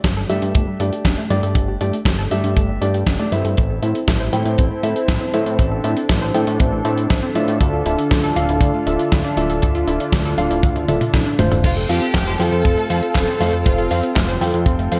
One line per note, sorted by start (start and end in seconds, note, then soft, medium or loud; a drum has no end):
0.04 0.27 G1 loud
0.04 0.11 G3 medium
0.04 kick loud
0.04 snare loud
0.04 closed hi-hat medium
0.17 0.24 A4 loud
0.29 0.41 G2 medium
0.29 0.77 A3 medium
0.29 0.77 D4 medium
0.29 0.36 G4 medium
0.29 0.77 G4 medium
0.29 0.77 E5 loud
0.29 closed hi-hat medium
0.42 0.53 G2 loud
0.42 0.54 D4 medium
0.42 closed hi-hat medium
0.55 0.66 G1 medium
0.55 0.66 A3 medium
0.55 kick loud
0.55 closed hi-hat medium
0.67 0.74 G3 medium
0.80 0.91 G2 medium
0.80 1.27 A3 medium
0.80 1.27 D4 medium
0.80 1.27 G4 medium
0.80 0.87 A4 medium
0.80 1.27 D5 medium
0.80 closed hi-hat medium
0.93 1.04 G4 medium
0.93 closed hi-hat soft
1.05 1.16 G1 medium
1.05 1.12 D4 medium
1.05 kick loud
1.05 snare loud
1.05 closed hi-hat medium
1.18 1.25 A3 loud
1.30 1.42 G2 loud
1.30 1.37 G3 medium
1.30 1.78 A3 medium
1.30 1.78 D4 medium
1.30 1.78 G4 medium
1.30 1.78 D5 loud
1.30 closed hi-hat medium
1.43 1.54 G2 medium
1.43 1.55 A4 medium
1.43 closed hi-hat soft
1.55 1.78 G1 loud
1.55 1.68 A4 medium
1.55 kick loud
1.55 closed hi-hat medium
1.68 1.80 G4 medium
1.81 1.92 G2 medium
1.81 1.94 A3 medium
1.81 1.94 D4 medium
1.81 1.88 D4 medium
1.81 1.94 G4 medium
1.81 1.94 D5 medium
1.81 closed hi-hat medium
1.93 2.05 A3 medium
1.93 closed hi-hat soft
2.05 2.28 G1 loud
2.05 2.13 G3 medium
2.05 kick loud
2.05 snare loud
2.05 closed hi-hat medium
2.19 2.25 A4 loud
2.31 2.42 G2 medium
2.31 2.79 A3 medium
2.31 2.79 D4 medium
2.31 2.79 G4 medium
2.31 2.38 G4 medium
2.31 2.79 E5 loud
2.31 closed hi-hat medium
2.44 2.55 G2 loud
2.44 2.56 D4 medium
2.44 closed hi-hat medium
2.56 2.79 G1 loud
2.56 2.68 A3 medium
2.56 kick loud
2.56 closed hi-hat medium
2.69 2.76 G3 medium
2.81 3.04 G2 loud
2.81 3.16 A3 medium
2.81 3.16 D4 medium
2.81 3.16 G4 medium
2.81 2.88 A4 medium
2.81 3.16 D5 medium
2.81 closed hi-hat medium
2.94 3.06 G4 medium
2.94 closed hi-hat soft
3.07 3.18 G1 medium
3.07 3.14 D4 medium
3.07 kick loud
3.07 snare loud
3.07 closed hi-hat medium
3.19 3.29 A3 medium
3.19 3.26 A3 loud
3.19 3.29 D4 medium
3.19 3.29 G4 medium
3.19 3.29 D5 medium
3.19 closed hi-hat soft
3.32 3.43 G2 medium
3.32 3.39 G3 medium
3.32 3.79 C4 medium
3.32 3.79 E4 medium
3.32 3.79 A4 medium
3.32 3.79 E5 medium
3.32 closed hi-hat medium
3.45 3.56 G2 medium
3.45 3.57 A4 medium
3.45 closed hi-hat soft
3.57 3.80 A1 loud
3.57 7.57 C4 medium
3.57 5.57 E4 medium
3.57 11.60 A4 loud
3.57 3.69 C5 medium
3.57 kick loud
3.57 closed hi-hat medium
3.70 3.82 A4 medium
3.82 3.94 A2 medium
3.82 3.96 C4 medium
3.82 3.89 E4 medium
3.82 3.96 E4 medium
3.82 3.96 A4 medium
3.82 3.96 E5 medium
3.82 closed hi-hat medium
3.95 4.06 C4 medium
3.95 closed hi-hat soft
4.08 4.30 A1 loud
4.08 4.15 A3 medium
4.08 kick loud
4.08 snare loud
4.08 closed hi-hat medium
4.20 4.27 C5 loud
4.33 4.44 A2 medium
4.33 4.80 C4 medium
4.33 4.80 E4 medium
4.33 4.80 A4 medium
4.33 4.40 A4 medium
4.33 4.80 G5 loud
4.33 closed hi-hat medium
4.45 4.57 A2 loud
4.45 4.57 E4 medium
4.45 closed hi-hat medium
4.58 4.70 A1 medium
4.58 4.69 C4 medium
4.58 kick loud
4.58 closed hi-hat medium
4.71 4.77 A3 medium
4.83 4.94 A2 medium
4.83 5.31 C4 medium
4.83 5.31 E4 medium
4.83 5.31 A4 medium
4.83 4.90 C5 medium
4.83 5.31 E5 medium
4.83 closed hi-hat medium
4.96 5.07 A4 medium
4.96 closed hi-hat soft
5.08 5.20 A1 medium
5.08 5.15 E4 medium
5.08 kick loud
5.08 snare loud
5.08 closed hi-hat medium
5.21 5.28 C4 loud
5.34 5.45 A2 loud
5.34 5.41 A3 medium
5.34 5.81 C4 medium
5.34 5.81 E4 medium
5.34 5.81 A4 medium
5.34 5.81 E5 loud
5.34 closed hi-hat medium
5.46 5.57 A2 medium
5.46 5.58 C5 medium
5.46 closed hi-hat medium
5.59 5.81 A1 loud
5.59 7.59 D4 medium
5.59 5.71 C5 medium
5.59 kick loud
5.59 closed hi-hat medium
5.72 5.84 A4 medium
5.84 5.95 A2 medium
5.84 5.97 C4 medium
5.84 5.97 E4 medium
5.84 5.91 E4 medium
5.84 5.97 A4 medium
5.84 5.97 E5 medium
5.84 closed hi-hat medium
5.97 6.08 C4 medium
5.97 closed hi-hat medium
6.09 6.32 A1 loud
6.09 6.16 A3 medium
6.09 kick loud
6.09 snare loud
6.09 closed hi-hat medium
6.22 6.29 C5 loud
6.34 6.46 A2 medium
6.34 6.82 C4 medium
6.34 6.82 E4 medium
6.34 6.41 A4 medium
6.34 6.82 A4 medium
6.34 6.82 G5 loud
6.34 closed hi-hat medium
6.47 6.58 A2 loud
6.47 6.59 E4 medium
6.47 closed hi-hat medium
6.60 6.82 A1 loud
6.60 6.71 C4 medium
6.60 kick loud
6.60 closed hi-hat medium
6.72 6.79 A3 medium
6.85 7.07 A2 loud
6.85 7.32 C4 medium
6.85 7.32 E4 medium
6.85 7.32 A4 medium
6.85 6.92 C5 medium
6.85 7.32 E5 medium
6.85 closed hi-hat medium
6.97 7.09 A4 medium
6.97 closed hi-hat medium
7.10 7.21 A1 medium
7.10 7.17 E4 medium
7.10 kick loud
7.10 snare loud
7.10 closed hi-hat medium
7.22 7.29 C4 loud
7.35 7.47 A2 medium
7.35 7.42 A3 medium
7.35 7.83 D4 medium
7.35 7.83 F4 medium
7.35 7.83 A4 medium
7.35 7.83 E5 medium
7.35 closed hi-hat medium
7.48 7.59 A2 loud
7.48 7.60 C5 medium
7.48 closed hi-hat medium
7.60 7.83 D2 loud
7.60 11.60 D3 medium
7.60 11.60 D4 medium
7.60 11.60 F4 medium
7.60 7.72 A4 medium
7.60 kick loud
7.60 closed hi-hat medium
7.73 7.85 F4 medium
7.86 7.97 D1 medium
7.86 7.99 D4 medium
7.86 7.93 E4 medium
7.86 7.99 F4 medium
7.86 7.99 A4 medium
7.86 7.99 E5 medium
7.86 closed hi-hat medium
7.98 8.10 D4 medium
7.98 closed hi-hat medium
8.11 8.33 D2 loud
8.11 8.18 A3 medium
8.11 kick loud
8.11 snare loud
8.11 closed hi-hat medium
8.24 8.30 A4 loud
8.36 8.47 D1 medium
8.36 8.84 D4 medium
8.36 8.84 F4 medium
8.36 8.43 F4 medium
8.36 8.84 A4 medium
8.36 8.84 F5 loud
8.36 closed hi-hat medium
8.49 8.60 D1 loud
8.49 8.61 E4 medium
8.49 closed hi-hat medium
8.61 8.72 D2 loud
8.61 8.73 D4 medium
8.61 kick loud
8.61 closed hi-hat medium
8.74 8.81 A3 medium
8.87 8.98 D1 loud
8.87 9.34 D4 medium
8.87 9.34 F4 medium
8.87 9.34 A4 medium
8.87 8.94 A4 medium
8.87 9.34 E5 medium
8.87 closed hi-hat medium
8.99 9.11 F4 medium
8.99 closed hi-hat medium
9.12 9.23 D2 medium
9.12 9.19 E4 medium
9.12 kick loud
9.12 snare loud
9.12 closed hi-hat medium
9.25 9.31 D4 loud
9.37 9.48 D1 loud
9.37 9.44 A3 medium
9.37 9.84 D4 medium
9.37 9.85 F4 medium
9.37 9.85 A4 medium
9.37 9.85 E5 loud
9.37 closed hi-hat medium
9.50 9.61 D1 medium
9.50 9.61 A4 medium
9.50 closed hi-hat medium
9.62 9.85 D2 loud
9.62 9.74 A4 medium
9.62 kick loud
9.62 closed hi-hat medium
9.75 9.87 F4 medium
9.75 closed hi-hat soft
9.87 9.99 D1 medium
9.87 10.01 D4 medium
9.87 9.94 E4 medium
9.87 10.01 F4 medium
9.87 10.01 A4 medium
9.87 10.01 E5 medium
9.87 closed hi-hat medium
10.00 10.12 D4 medium
10.00 closed hi-hat medium
10.12 10.35 D2 loud
10.12 10.20 A3 medium
10.12 kick loud
10.12 snare loud
10.12 closed hi-hat medium
10.25 10.32 A4 loud
10.25 closed hi-hat soft
10.38 10.49 D1 medium
10.38 10.85 D4 medium
10.38 10.85 F4 medium
10.38 10.45 F4 medium
10.38 10.85 A4 medium
10.38 10.85 F5 loud
10.38 closed hi-hat medium
10.51 10.62 D1 loud
10.51 10.63 E4 medium
10.51 closed hi-hat medium
10.63 10.86 D2 loud
10.63 10.75 D4 medium
10.63 kick loud
10.63 closed hi-hat medium
10.63 high tom medium
10.76 10.83 A3 medium
10.76 closed hi-hat soft
10.76 high tom medium
10.88 11.00 D1 loud
10.88 11.36 D4 medium
10.88 11.36 F4 medium
10.88 11.36 A4 medium
10.88 10.95 A4 medium
10.88 11.36 E5 medium
10.88 closed hi-hat medium
10.88 high tom medium
11.01 11.12 F4 medium
11.01 closed hi-hat medium
11.01 mid tom medium
11.14 11.25 D2 medium
11.14 11.20 E4 medium
11.14 kick loud
11.14 snare loud
11.14 closed hi-hat medium
11.14 mid tom medium
11.26 11.33 D4 loud
11.39 11.50 D1 medium
11.39 11.86 A3 medium
11.39 11.46 A3 medium
11.39 11.86 C4 medium
11.39 11.86 F4 medium
11.39 11.86 C5 loud
11.39 closed hi-hat medium
11.39 mid tom loud
11.51 11.63 D1 loud
11.51 11.63 A4 medium
11.51 closed hi-hat medium
11.51 mid tom medium
11.64 11.86 F1 loud
11.64 15.00 C4 medium
11.64 11.75 F4 loud
11.64 15.00 F4 medium
11.64 15.00 A4 loud
11.64 11.76 C5 medium
11.64 kick loud
11.64 closed hi-hat medium
11.64 crash loud
11.77 11.89 A4 medium
11.77 closed hi-hat soft
11.89 12.00 F2 medium
11.89 12.02 C4 medium
11.89 12.02 F4 medium
11.89 11.96 F4 medium
11.89 12.36 G4 loud
11.89 12.02 A4 medium
11.89 12.02 F5 medium
11.89 open hi-hat loud
12.02 12.13 C4 medium
12.02 closed hi-hat soft
12.14 12.37 F1 loud
12.14 12.21 A3 medium
12.14 kick loud
12.14 snare loud
12.14 clap loud
12.14 closed hi-hat medium
12.27 12.34 C5 loud
12.27 closed hi-hat soft
12.39 12.51 F2 medium
12.39 12.87 C4 medium
12.39 12.87 F4 medium
12.39 13.13 A4 loud
12.39 12.46 A4 medium
12.39 12.87 A4 medium
12.39 12.87 G5 loud
12.39 open hi-hat loud
12.52 12.63 F2 loud
12.52 12.64 F4 medium
12.52 closed hi-hat soft
12.65 12.76 F1 medium
12.65 12.76 C4 medium
12.65 kick loud
12.65 closed hi-hat medium
12.77 12.84 A3 medium
12.77 closed hi-hat soft
12.90 13.01 F2 medium
12.90 13.37 C4 medium
12.90 13.37 F4 medium
12.90 13.37 A4 medium
12.90 12.97 C5 medium
12.90 13.37 F5 medium
12.90 open hi-hat loud
13.03 13.14 A4 medium
13.03 closed hi-hat soft
13.15 13.26 F1 medium
13.15 13.22 F4 medium
13.15 13.62 A4 loud
13.15 kick loud
13.15 snare loud
13.15 clap loud
13.15 closed hi-hat medium
13.28 13.35 C4 loud
13.28 closed hi-hat soft
13.40 13.52 F2 loud
13.40 13.47 A3 medium
13.40 13.88 C4 medium
13.40 13.88 F4 medium
13.40 13.88 A4 medium
13.40 13.88 F5 loud
13.40 open hi-hat medium
13.53 13.64 F2 medium
13.53 13.64 C5 medium
13.53 closed hi-hat soft
13.65 13.88 F1 loud
13.65 14.16 F4 medium
13.65 13.78 C5 medium
13.65 kick loud
13.65 closed hi-hat medium
13.78 13.90 A4 medium
13.78 closed hi-hat soft
13.91 14.02 F2 medium
13.91 14.04 C4 medium
13.91 13.98 F4 medium
13.91 14.04 F4 medium
13.91 14.04 A4 medium
13.91 14.04 F5 medium
13.91 open hi-hat loud
14.03 14.15 C4 medium
14.03 closed hi-hat soft
14.16 14.38 F1 loud
14.16 14.23 A3 medium
14.16 kick loud
14.16 snare loud
14.16 clap medium
14.16 closed hi-hat medium
14.28 14.35 C5 loud
14.28 closed hi-hat soft
14.41 14.52 F2 medium
14.41 14.89 C4 loud
14.41 14.89 F4 medium
14.41 14.48 A4 medium
14.41 14.89 A4 medium
14.41 14.89 G5 loud
14.41 open hi-hat medium
14.54 14.65 F2 loud
14.54 14.66 F4 medium
14.54 closed hi-hat soft
14.66 14.89 F1 loud
14.66 14.78 C4 medium
14.66 kick loud
14.66 closed hi-hat medium
14.79 14.86 A3 medium
14.79 closed hi-hat soft
14.92 15.00 F2 loud
14.92 15.00 C4 medium
14.92 15.00 F4 medium
14.92 15.00 A4 medium
14.92 14.98 C5 medium
14.92 15.00 F5 medium
14.92 open hi-hat loud